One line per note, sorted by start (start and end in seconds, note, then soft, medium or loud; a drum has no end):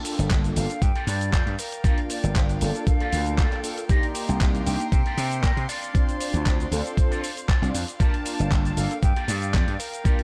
0.00 0.53 A#3 medium
0.00 0.53 D4 medium
0.00 0.54 F4 medium
0.00 0.54 A4 loud
0.00 3.86 F5 medium
0.00 5.66 G5 medium
0.05 muted clean electric guitar stroke soft
0.05 open hi-hat loud
0.05 cabasa medium
0.19 0.50 G1 loud
0.19 closed hi-hat soft
0.19 cabasa soft
0.31 kick loud
0.31 clap loud
0.31 closed hi-hat medium
0.31 cabasa soft
0.44 closed hi-hat soft
0.44 cabasa soft
0.56 0.65 G1 medium
0.56 0.72 A#3 medium
0.56 0.72 D4 medium
0.56 0.72 F4 medium
0.56 0.72 A4 loud
0.56 0.83 F5 loud
0.56 muted clean electric guitar stroke medium
0.56 open hi-hat loud
0.56 cabasa medium
0.69 muted clean electric guitar stroke soft
0.69 closed hi-hat soft
0.69 cabasa soft
0.82 0.91 G2 medium
0.82 1.06 G5 loud
0.82 kick loud
0.82 closed hi-hat loud
0.82 cabasa soft
0.95 1.14 A#3 medium
0.95 1.14 F4 loud
0.95 1.14 G4 loud
0.95 1.14 A4 loud
0.95 closed hi-hat soft
1.07 1.33 G2 loud
1.07 1.60 D5 loud
1.07 open hi-hat loud
1.07 cabasa medium
1.21 closed hi-hat soft
1.21 cabasa soft
1.33 1.42 F2 medium
1.33 1.53 A#3 medium
1.33 1.53 F4 medium
1.33 1.53 G4 medium
1.33 1.53 C5 medium
1.33 kick loud
1.33 clap loud
1.33 closed hi-hat medium
1.33 cabasa soft
1.46 1.54 G2 medium
1.46 closed hi-hat soft
1.59 2.11 A#4 loud
1.59 open hi-hat loud
1.59 cabasa medium
1.72 muted clean electric guitar stroke soft
1.72 closed hi-hat soft
1.72 cabasa soft
1.84 2.58 A#3 medium
1.84 1.98 A#3 loud
1.84 2.58 D4 medium
1.84 1.98 F4 loud
1.84 2.59 F4 medium
1.84 1.98 G4 medium
1.84 1.98 A4 loud
1.84 kick loud
1.84 closed hi-hat medium
1.84 cabasa soft
1.98 closed hi-hat soft
2.09 2.35 D5 medium
2.09 muted clean electric guitar stroke soft
2.09 open hi-hat loud
2.09 cabasa medium
2.24 2.55 G1 loud
2.24 closed hi-hat soft
2.24 cabasa soft
2.35 2.42 C5 loud
2.35 kick loud
2.35 clap loud
2.35 closed hi-hat medium
2.35 cabasa soft
2.49 closed hi-hat soft
2.49 cabasa soft
2.61 2.71 G1 medium
2.61 3.10 A#3 medium
2.61 3.10 D4 medium
2.61 3.10 F4 medium
2.61 3.10 A4 loud
2.61 2.85 D5 medium
2.61 muted clean electric guitar stroke medium
2.61 open hi-hat loud
2.61 cabasa medium
2.75 closed hi-hat soft
2.75 cabasa soft
2.87 3.60 F5 loud
2.87 kick loud
2.87 closed hi-hat medium
2.87 cabasa soft
3.00 3.19 A#3 loud
3.00 3.20 F4 loud
3.00 3.20 G4 loud
3.00 3.20 A4 loud
3.00 closed hi-hat soft
3.12 3.45 D2 medium
3.12 3.61 A#3 medium
3.12 3.61 D4 medium
3.12 3.61 F4 medium
3.12 3.61 A4 medium
3.12 open hi-hat loud
3.12 cabasa medium
3.26 closed hi-hat soft
3.26 cabasa soft
3.38 3.58 A#3 loud
3.38 3.58 F4 medium
3.38 3.58 G4 medium
3.38 3.58 A4 medium
3.38 kick loud
3.38 clap loud
3.38 closed hi-hat medium
3.38 cabasa soft
3.52 clap soft
3.52 closed hi-hat soft
3.63 3.79 A#3 medium
3.63 3.80 D4 medium
3.63 3.80 F4 medium
3.63 3.80 A4 loud
3.63 open hi-hat loud
3.63 cabasa medium
3.78 muted clean electric guitar stroke soft
3.78 closed hi-hat soft
3.78 cabasa soft
3.88 4.63 A#3 medium
3.88 5.68 A#3 medium
3.88 4.03 C4 loud
3.88 4.64 D#4 medium
3.88 4.03 D#4 loud
3.88 4.03 G4 loud
3.88 4.64 G4 loud
3.88 4.04 A#4 loud
3.88 4.63 D5 medium
3.88 5.67 A#5 medium
3.88 7.96 C6 medium
3.88 kick loud
3.88 closed hi-hat medium
3.88 cabasa soft
4.03 closed hi-hat soft
4.15 muted clean electric guitar stroke soft
4.15 open hi-hat loud
4.15 cabasa medium
4.29 4.60 C2 loud
4.29 closed hi-hat soft
4.29 cabasa soft
4.41 kick loud
4.41 clap loud
4.41 closed hi-hat medium
4.41 cabasa soft
4.55 closed hi-hat soft
4.55 cabasa soft
4.65 4.76 C2 medium
4.65 4.82 A#3 loud
4.65 4.82 D4 medium
4.65 4.82 D#4 medium
4.65 4.83 G4 loud
4.65 4.90 G5 loud
4.65 muted clean electric guitar stroke medium
4.65 open hi-hat loud
4.65 cabasa medium
4.80 muted clean electric guitar stroke soft
4.80 closed hi-hat soft
4.80 cabasa soft
4.91 5.01 C3 medium
4.91 5.70 G5 loud
4.91 kick loud
4.91 closed hi-hat medium
4.91 cabasa soft
5.06 5.25 C4 loud
5.06 5.25 D#4 loud
5.06 5.25 G4 loud
5.06 5.25 A4 loud
5.06 closed hi-hat soft
5.17 5.43 C3 loud
5.17 open hi-hat loud
5.17 cabasa medium
5.32 closed hi-hat soft
5.32 cabasa soft
5.42 5.53 A#2 medium
5.42 5.63 C4 loud
5.42 5.63 D#4 medium
5.42 5.63 G4 medium
5.42 5.63 A#4 medium
5.42 kick loud
5.42 clap loud
5.42 closed hi-hat medium
5.42 cabasa soft
5.57 5.65 C3 medium
5.57 closed hi-hat soft
5.68 6.11 C4 medium
5.68 6.11 D4 medium
5.68 6.11 F4 medium
5.68 6.11 A4 loud
5.68 5.93 D5 loud
5.68 7.98 D5 medium
5.68 10.23 F5 medium
5.68 open hi-hat loud
5.68 cabasa medium
5.83 closed hi-hat soft
5.83 cabasa soft
5.94 6.68 C4 medium
5.94 6.69 D4 medium
5.94 6.69 F4 medium
5.94 6.69 C5 medium
5.94 6.67 D5 loud
5.94 kick loud
5.94 closed hi-hat medium
5.94 cabasa soft
6.09 closed hi-hat soft
6.09 cabasa soft
6.20 muted clean electric guitar stroke soft
6.20 open hi-hat loud
6.20 cabasa medium
6.34 6.65 D2 loud
6.34 closed hi-hat soft
6.34 cabasa soft
6.46 kick loud
6.46 clap loud
6.46 closed hi-hat medium
6.46 cabasa soft
6.60 closed hi-hat soft
6.60 cabasa soft
6.71 6.81 D2 medium
6.71 7.21 C4 loud
6.71 7.21 D4 medium
6.71 7.21 F4 medium
6.71 7.21 A4 loud
6.71 7.70 C5 medium
6.71 muted clean electric guitar stroke medium
6.71 open hi-hat loud
6.71 cabasa medium
6.86 closed hi-hat soft
6.86 cabasa soft
6.97 kick loud
6.97 closed hi-hat medium
6.97 cabasa soft
7.10 7.30 C4 loud
7.10 7.30 D4 medium
7.10 7.30 F4 loud
7.10 7.30 A4 loud
7.10 closed hi-hat soft
7.10 cabasa soft
7.24 open hi-hat loud
7.24 cabasa medium
7.37 closed hi-hat soft
7.37 cabasa soft
7.48 7.68 C4 medium
7.48 7.68 D4 medium
7.48 7.68 F4 medium
7.48 7.68 A4 medium
7.48 kick loud
7.48 clap loud
7.48 closed hi-hat medium
7.48 cabasa soft
7.62 7.70 C2 medium
7.62 7.76 C4 medium
7.62 7.76 D4 medium
7.62 7.77 F4 medium
7.62 7.77 D5 medium
7.62 clap soft
7.62 closed hi-hat soft
7.62 cabasa soft
7.74 7.83 F2 medium
7.74 open hi-hat loud
7.74 cabasa medium
7.88 muted clean electric guitar stroke soft
7.88 closed hi-hat soft
7.88 cabasa soft
7.99 8.74 A#3 medium
7.99 8.14 A#3 loud
7.99 8.74 D4 medium
7.99 8.14 F4 loud
7.99 8.74 F4 medium
7.99 8.14 G4 medium
7.99 8.14 A4 loud
7.99 10.23 G5 medium
7.99 8.75 A5 loud
7.99 kick loud
7.99 closed hi-hat medium
7.99 cabasa soft
8.14 closed hi-hat soft
8.25 muted clean electric guitar stroke soft
8.25 open hi-hat loud
8.25 cabasa medium
8.39 8.71 G1 loud
8.39 closed hi-hat soft
8.39 cabasa soft
8.51 kick loud
8.51 clap loud
8.51 closed hi-hat medium
8.51 cabasa soft
8.65 closed hi-hat soft
8.65 cabasa soft
8.76 8.86 G1 medium
8.76 8.92 A#3 loud
8.76 8.92 D4 medium
8.76 8.92 F4 medium
8.76 8.93 A4 loud
8.76 9.01 F5 loud
8.76 muted clean electric guitar stroke medium
8.76 open hi-hat loud
8.76 cabasa medium
8.91 closed hi-hat soft
8.91 cabasa soft
9.02 9.12 G2 medium
9.02 9.26 G5 loud
9.02 kick loud
9.02 closed hi-hat medium
9.02 cabasa soft
9.16 9.35 A#3 loud
9.16 9.35 F4 loud
9.16 9.35 G4 loud
9.16 9.35 A4 loud
9.16 closed hi-hat soft
9.28 9.56 G2 loud
9.28 9.80 D5 loud
9.28 open hi-hat loud
9.28 cabasa medium
9.42 closed hi-hat soft
9.42 cabasa soft
9.53 9.63 F2 medium
9.53 9.74 A#3 medium
9.53 9.74 F4 medium
9.53 9.74 G4 medium
9.53 9.74 A4 medium
9.53 kick loud
9.53 clap loud
9.53 closed hi-hat medium
9.53 cabasa soft
9.67 9.75 G2 medium
9.67 closed hi-hat soft
9.79 10.23 A#4 loud
9.79 open hi-hat loud
9.79 cabasa medium
9.93 muted clean electric guitar stroke soft
9.93 closed hi-hat soft
9.93 cabasa soft
10.04 10.23 A#3 medium
10.04 10.19 A#3 loud
10.04 10.23 D4 medium
10.04 10.19 F4 loud
10.04 10.23 F4 medium
10.04 10.19 G4 loud
10.04 10.19 A4 loud
10.04 kick loud
10.04 closed hi-hat medium
10.04 cabasa soft
10.19 closed hi-hat soft